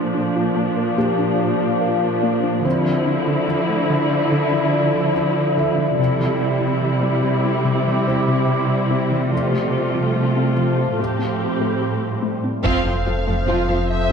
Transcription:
Already playing: A#2 F3 D4 F4 A#4 C5 D5
0.15 D4
0.36 F4
0.56 A#3
0.77 A#4
0.98 A#3 G4
1.19 D4
1.40 A#4
1.60 A#3
1.81 A#4
2.23 A#3
2.44 D4
2.64 D3 F3 C4 E4 A4 C5 D5
2.86 F3
3.07 D4
3.27 D3
3.48 F3
3.69 A3
3.90 D3
4.11 D4
4.32 D3
4.52 F3
4.74 D4
4.94 D3
5.15 D4
5.58 D3 E5
5.78 F3
5.98 C3 G3 E4 G4 C5
6.20 E3
6.40 C4
6.61 C3
6.82 E3
7.03 G3
7.23 C3
7.45 C4
7.65 C3
7.86 E3
8.07 C4 C5
8.28 C3
8.49 C4
8.91 C3
9.12 E3
9.32 F3 A3 F4 A4
9.53 A3
9.74 F4
9.94 F3
10.16 A3
10.36 C4
10.57 F3
10.78 F4
10.98 A2 G3 A3 C4 E4 G4 C5
11.19 C4
11.40 G4
11.61 A3
11.81 G4
12.23 A3
12.44 C4
12.64 F1 F2 F3 C4 F4 A4 C5 F5, taiko
12.85 F2 F3 C4 A4 C5
13.05 F2 F3 C4 F4 A4
13.26 F2 F3 A3 C4 A4 C5
13.46 F2 F3 C4 F4
13.68 F2 F3 C4 A4 C5
13.90 E5

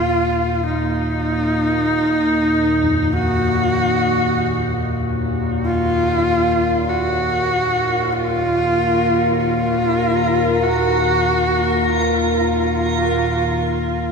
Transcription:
Already playing: D#2 A#2 F4
0.66 D#4
2.84 F2
3.13 F#4
5.65 F4 A#4
6.89 F#4
8.12 F4
9.38 F4
10.63 F#4
11.89 F4

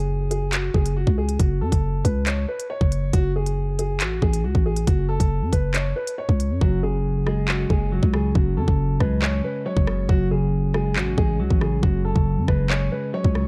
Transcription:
Already playing: F#1 G#4
0.31 G#4, closed hi-hat
0.52 F#4, clap, closed hi-hat
0.74 F#1 G#4, kick
0.86 closed hi-hat
0.96 F#4
1.07 C#2, kick
1.18 G#4
1.29 closed hi-hat
1.40 F#1 F#4, kick, closed hi-hat
1.61 F#2 A4
1.72 F#1, kick, closed hi-hat
2.05 C#2 B4, kick, closed hi-hat
2.27 C#5, clap, closed hi-hat
2.48 B4
2.60 closed hi-hat
2.70 C#5
2.81 F#1, kick
2.92 closed hi-hat
3.13 F#1 F#4, kick, closed hi-hat
3.36 G#4
3.46 closed hi-hat
3.79 G#4, closed hi-hat
4.00 A1 F#4, clap, closed hi-hat
4.22 A1 G#4, kick
4.33 closed hi-hat
4.44 C#2 F#4
4.55 A1, kick
4.66 G#4
4.76 closed hi-hat
4.87 F#1 F#4, kick, closed hi-hat
5.09 A4
5.20 F#1, kick, closed hi-hat
5.42 F#2
5.52 F#1 B4, kick, closed hi-hat
5.74 C#5, clap, closed hi-hat
5.96 B4
6.07 closed hi-hat
6.18 C#5
6.29 C#2, kick
6.40 closed hi-hat
6.50 F#2
6.61 F#1 F#2 F#4, kick
6.83 C#3 G#4
7.26 G#3 G#4, cross-stick
7.48 C#4 F#4, clap
7.70 F#1 G#3 G#4, kick
7.92 F#3 F#4
8.03 C#2, kick
8.14 C#3 G#4, cross-stick
8.35 F#1 F#2 F#4, kick
8.57 F#2 C#3 A4
8.68 F#1, kick
9.00 C#2 G#3 B4, kick, cross-stick
9.22 C#4 C#5, clap
9.44 G#3 B4
9.66 F#3 C#5
9.77 F#1, kick
9.87 C#3, cross-stick
10.09 F#1 F#2 F#4, kick
10.31 C#3 G#4
10.74 G#3 G#4, cross-stick
10.96 A1 C#4 F#4, clap
11.18 A1 G#3 G#4, kick
11.39 C#2 F#3 F#4
11.50 A1, kick
11.61 C#3 G#4, cross-stick
11.82 F#1 F#2 F#4, kick
12.05 C#3 A4
12.16 F#1, kick
12.37 F#2
12.48 F#1 G#3 B4, kick, cross-stick
12.70 C#4 C#5, clap
12.92 G#3 B4
13.13 F#3 C#5
13.24 C#2, kick
13.35 C#3, cross-stick

